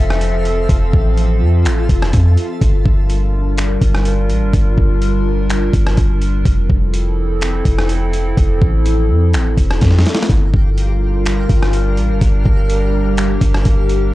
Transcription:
Already playing: 808-style bass F1, ambient pad F3 C4 A4 E5, synth texture F4 E5 A5
0.10 cross-stick
0.21 closed hi-hat
0.45 closed hi-hat
0.69 808-style bass F1, ambient pad F4, kick, closed hi-hat
0.93 808-style bass A1, kick
1.18 closed hi-hat
1.41 808-style bass F2
1.65 808-style bass A1, finger snap, closed hi-hat
1.89 808-style bass F1, kick, closed hi-hat
2.02 cross-stick
2.13 808-style bass F2, kick, closed hi-hat
2.37 closed hi-hat
2.61 808-style bass G1, ambient pad G3 D4 F4 A#4, kick, closed hi-hat
2.86 808-style bass G1, kick
3.10 closed hi-hat
3.58 finger snap, closed hi-hat
3.81 808-style bass G1, kick, closed hi-hat
3.94 cross-stick
4.05 closed hi-hat
4.29 808-style bass A1, closed hi-hat
4.41 808-style bass G1
4.53 808-style bass G1, kick, closed hi-hat
4.78 808-style bass G1, kick
5.02 closed hi-hat
5.50 finger snap, closed hi-hat
5.73 808-style bass G1, kick, closed hi-hat
5.87 cross-stick
5.97 808-style bass G1, kick, closed hi-hat
6.21 closed hi-hat
6.45 808-style bass F1, ambient pad F3 C4 E4 A4, kick, closed hi-hat
6.70 808-style bass F1, kick
6.94 closed hi-hat
7.41 finger snap, closed hi-hat
7.65 808-style bass F1, kick, closed hi-hat
7.79 cross-stick
7.89 closed hi-hat
8.13 closed hi-hat
8.37 808-style bass F1, kick, closed hi-hat
8.62 808-style bass A1, kick
8.86 closed hi-hat
9.09 808-style bass F2
9.33 808-style bass A1, finger snap, closed hi-hat
9.57 808-style bass F1, kick, closed hi-hat
9.71 cross-stick
9.81 808-style bass F2, kick, snare, closed hi-hat
9.91 snare
9.98 snare
10.05 snare, closed hi-hat
10.15 snare
10.22 snare
10.29 808-style bass G1, ambient pad G3 D4 F4 A#4, synth texture G4 F5 A#5, kick, closed hi-hat
10.54 808-style bass G1, kick
10.78 closed hi-hat
11.25 finger snap, closed hi-hat
11.49 808-style bass G1, kick, closed hi-hat
11.62 cross-stick
11.73 closed hi-hat
11.97 808-style bass A1, closed hi-hat
12.09 808-style bass G1
12.21 808-style bass G1, ambient pad G4, kick, closed hi-hat
12.46 808-style bass G1, kick
12.70 closed hi-hat
13.17 finger snap, closed hi-hat
13.41 808-style bass G1, kick, closed hi-hat
13.55 cross-stick
13.65 808-style bass G1, kick, closed hi-hat
13.89 closed hi-hat

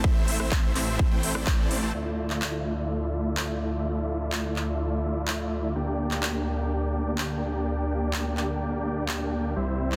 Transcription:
0.04 detuned saw bass A1, supersaw synth A3 E4 E5, kick
0.28 open hi-hat
0.40 detuned saw bass A1, supersaw synth A3 C4 E4 C5 E5, cross-stick
0.52 kick, clap
0.75 detuned saw bass A1, supersaw synth A3 C4 E4 C5 E5, clap, open hi-hat
0.99 kick
1.11 detuned saw bass A1, supersaw synth A3 C4 E4 C5 G5
1.23 open hi-hat
1.35 detuned saw bass A1, supersaw synth A3 C4 E4 C5 D5, cross-stick
1.47 kick, clap
1.71 open hi-hat
1.83 detuned saw bass A1, supersaw synth A3 C4 E4 C5 A5
1.95 detuned saw bass D2, supersaw synth A3 E4 F4 D5 E5
2.30 clap
2.42 clap
3.37 clap
4.32 clap
4.56 clap
5.28 clap
5.75 detuned saw bass D2, supersaw synth A#3 D4 G4 D5 G5
6.11 clap
6.23 clap
7.18 clap
8.13 clap
8.37 clap
9.09 clap
9.56 detuned saw bass C2, supersaw synth G3 C4 E4 C5 E5
9.92 clap

